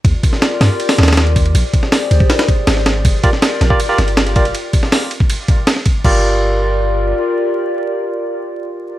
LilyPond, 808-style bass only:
\new Staff \with { instrumentName = "808-style bass" } { \clef bass \time 4/4 \key g \phrygian \tempo 4 = 160 ees,8 r4 g,8 r8 ees,4. | bes,,8 r4 d,8 r4 aes,,4 | g,,8 r4 bes,,8 r8 g,,4. | r1 |
g,,2. r4 | r1 | }